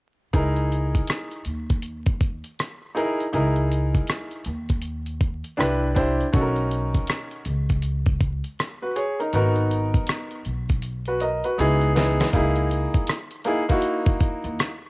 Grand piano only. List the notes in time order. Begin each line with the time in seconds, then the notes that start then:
0.33 D#4 E4 G#4 A#4
2.95 D#4 E4 G#4 A#4
3.33 D#4 E4 G#4 A#4
5.57 D4 E4 G4 B4
5.94 D4 E4 G4 C5
6.33 C#4 D#4 F#4 A4
6.41 A#4
8.82 F#4 B4
8.96 G#4 C#5
9.20 D#4 A#4
9.33 B3 D#4 F#4 A#4
11.08 F#4 B4
11.21 A#4 D#5
11.44 F#4 B4
11.58 B3 D#4 E4 G#4
11.95 B3 D#4 E4 G#4
12.33 A#3 D#4 E4 G#4
13.45 A#3 D#4 E4 G#4
13.69 A#3 D#4 E4 F#4